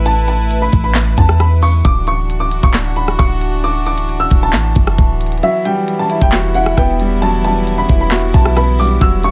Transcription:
Already playing: A1 A3 E4 B4
0.06 A5, closed hi-hat
0.28 A5, closed hi-hat
0.51 closed hi-hat
0.62 B5
0.72 A1, kick, closed hi-hat
0.84 B5
0.95 snare, clap, closed hi-hat
1.17 E2 A5, kick, closed hi-hat
1.29 cross-stick
1.40 B5, cross-stick, closed hi-hat
1.62 C#6, open hi-hat
1.85 D1 E3 D4 F#4 D6, kick, closed hi-hat
2.07 C#6, closed hi-hat
2.30 closed hi-hat
2.40 D6
2.51 closed hi-hat
2.63 D1 C#6, kick
2.74 snare, clap, closed hi-hat
2.96 B5, closed hi-hat
3.08 cross-stick
3.19 D1 C#6, kick, cross-stick, closed hi-hat
3.41 closed hi-hat
3.64 D6, closed hi-hat
3.86 D6, closed hi-hat
3.98 closed hi-hat
4.09 closed hi-hat
4.20 E6
4.31 D1, kick, closed hi-hat
4.43 A5
4.53 A1, snare, clap, closed hi-hat
4.75 F#1, kick, closed hi-hat
4.87 cross-stick
4.98 D1, kick, closed hi-hat
5.21 closed hi-hat, open hi-hat
5.26 closed hi-hat
5.32 closed hi-hat
5.38 closed hi-hat
5.43 F#3 B3 E4 E5, closed hi-hat
5.65 G3 G5, closed hi-hat
5.88 closed hi-hat
5.99 A5
6.10 E4, closed hi-hat
6.22 E1 G5, kick
6.32 F#4, snare, clap, closed hi-hat
6.55 E4 F#5, closed hi-hat
6.66 cross-stick
6.77 E1 B3 G5, kick, cross-stick, closed hi-hat
7.00 G3, closed hi-hat
7.22 F#3 A5, closed hi-hat
7.44 G3 A5, closed hi-hat
7.67 closed hi-hat
7.78 B5
7.89 E1 E4, kick, closed hi-hat
8.01 B5
8.11 F#4, snare, clap, closed hi-hat
8.34 B1 E4 A5, kick, closed hi-hat
8.45 cross-stick
8.57 B3 B5, cross-stick, closed hi-hat
8.79 G3 D6, open hi-hat
9.01 E1 F#3 E6, kick, closed hi-hat
9.24 G3 C#6, closed hi-hat

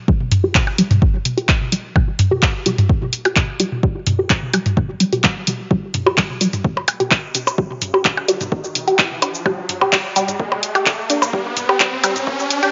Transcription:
0.08 G3, kick
0.20 high tom
0.32 mid tom, open hi-hat
0.44 G4
0.55 G3, kick, clap, high tom
0.67 percussion blips
0.78 G3, open hi-hat
0.91 mid tom, open hi-hat, high tom
1.02 A#3, kick
1.25 open hi-hat, high tom
1.37 G4, open hi-hat
1.49 kick, clap
1.61 high tom
1.72 G3, open hi-hat
1.96 G3, kick, high tom, percussion blips
2.19 mid tom, open hi-hat
2.31 G4, high tom
2.43 G3, kick, clap
2.66 G3, open hi-hat, high tom
2.78 mid tom, open hi-hat
2.89 A#3, kick
3.02 high tom
3.13 open hi-hat
3.25 G4, open hi-hat, percussion blips
3.36 kick, clap, high tom
3.60 G3, open hi-hat
3.72 high tom
3.83 G3, kick
4.07 mid tom, open hi-hat, high tom
4.19 G4
4.30 G3, kick, clap
4.43 high tom
4.54 G3, open hi-hat, percussion blips
4.66 mid tom, open hi-hat
4.77 A#3, kick, high tom
5.00 G3, open hi-hat
5.12 G4, open hi-hat, high tom
5.24 G3, kick, clap
5.47 G3, open hi-hat, high tom
5.71 G3, kick, riser
5.94 mid tom, open hi-hat, high tom
6.06 G4, percussion blips
6.18 G3, kick, clap
6.30 high tom
6.41 G3, open hi-hat, shaker
6.53 mid tom, open hi-hat, shaker
6.64 A#3, kick, high tom
6.77 percussion blips
6.88 open hi-hat, percussion blips
7.00 G4, open hi-hat, high tom
7.11 kick, clap
7.35 D4, open hi-hat, high tom, shaker
7.47 percussion blips, shaker
7.58 G3, kick
7.71 high tom
7.82 mid tom, open hi-hat, shaker
7.94 G4, percussion blips
8.05 G3, kick, clap, high tom
8.17 percussion blips
8.28 G3, open hi-hat, shaker
8.41 mid tom, open hi-hat, high tom, shaker
8.52 A#3, kick
8.64 shaker
8.75 open hi-hat, high tom
8.88 G4, open hi-hat
8.99 kick, clap
9.11 high tom
9.22 D4, open hi-hat, percussion blips
9.34 shaker
9.46 G3, kick, high tom, percussion blips
9.69 mid tom, open hi-hat
9.81 G4, high tom, percussion blips
9.93 G3, kick, clap
10.16 G3, open hi-hat, high tom, shaker
10.28 mid tom, open hi-hat, shaker
10.39 A#3, kick
10.52 high tom, percussion blips
10.63 open hi-hat
10.75 G4, open hi-hat, percussion blips
10.86 kick, clap, high tom
11.10 D4, open hi-hat, shaker
11.22 high tom, percussion blips, shaker
11.33 G3, kick
11.57 mid tom, open hi-hat, high tom, shaker
11.69 G4, percussion blips
11.80 G3, kick, clap
11.93 high tom
12.04 G3, open hi-hat, percussion blips, shaker
12.16 mid tom, open hi-hat, shaker
12.27 A#3, kick, high tom
12.39 shaker
12.51 open hi-hat
12.63 G4, open hi-hat, high tom

